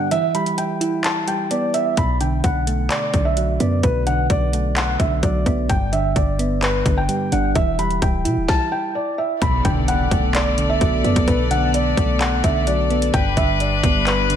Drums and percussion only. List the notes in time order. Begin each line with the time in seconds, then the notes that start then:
0.11 closed hi-hat
0.35 closed hi-hat
0.46 closed hi-hat
0.58 closed hi-hat
0.81 closed hi-hat
1.04 clap, closed hi-hat
1.28 closed hi-hat
1.51 closed hi-hat
1.74 closed hi-hat
1.97 kick, closed hi-hat
2.21 closed hi-hat
2.44 kick, closed hi-hat
2.67 closed hi-hat
2.90 clap, closed hi-hat
3.14 kick, closed hi-hat
3.37 closed hi-hat
3.60 closed hi-hat
3.83 kick, closed hi-hat
4.07 closed hi-hat
4.30 kick, closed hi-hat
4.53 closed hi-hat
4.76 clap, closed hi-hat
5.00 kick, closed hi-hat
5.23 kick, closed hi-hat
5.46 kick, closed hi-hat
5.69 kick, closed hi-hat
5.93 closed hi-hat
6.16 kick, closed hi-hat
6.39 closed hi-hat
6.62 clap, closed hi-hat
6.86 kick, closed hi-hat
7.09 closed hi-hat
7.32 closed hi-hat
7.55 kick, closed hi-hat
7.79 closed hi-hat
7.91 closed hi-hat
8.02 kick, closed hi-hat
8.25 closed hi-hat
8.48 kick, snare
9.42 kick, closed hi-hat
9.65 kick, closed hi-hat
9.88 closed hi-hat
10.11 kick, closed hi-hat
10.35 clap, closed hi-hat
10.58 closed hi-hat
10.81 kick, closed hi-hat
11.04 closed hi-hat
11.16 kick, closed hi-hat
11.28 kick, closed hi-hat
11.51 closed hi-hat
11.74 closed hi-hat
11.97 kick, closed hi-hat
12.21 clap, closed hi-hat
12.44 kick, closed hi-hat
12.67 closed hi-hat
12.90 closed hi-hat
13.02 closed hi-hat
13.14 kick, closed hi-hat
13.37 kick, closed hi-hat
13.60 closed hi-hat
13.83 kick, closed hi-hat
14.07 clap, closed hi-hat
14.30 closed hi-hat